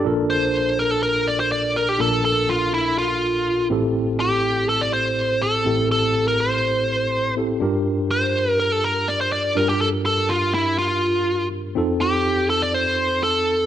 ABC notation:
X:1
M:4/4
L:1/16
Q:1/4=123
K:Bblyd
V:1 name="Lead electric guitar"
z2 c4 B A B2 d c d2 B G | A2 A2 F2 E2 F6 z2 | z2 G4 A d c4 A4 | A3 B c8 z4 |
z2 c4 B A B2 d c d2 B G | A2 A2 F2 E2 F6 z2 | z2 G4 A d c4 A4 |]
V:2 name="Tine electric piano"
[DFAB]16 | [DFAB]12- [DFAB]2 [CEGA]2- | [CEGA]12- [CEGA]2 [CEGA]2- | [CEGA]12 [CEGA]2 [DFGB]2- |
[DFGB]12- [DFGB]2 [DFGB]2- | [DFGB]12- [DFGB]2 z2 | [C_EFA]16 |]
V:3 name="Tine electric piano" clef=bass
[B,,,B,,]16 | [B,,,B,,]12- [B,,,B,,]2 [A,,,A,,]2- | [A,,,A,,]12- [A,,,A,,]2 [A,,,A,,]2- | [A,,,A,,]12- [A,,,A,,]2 G,,2- |
G,,12- G,,2 G,,2- | G,,12- G,,2 z2 | F,,16 |]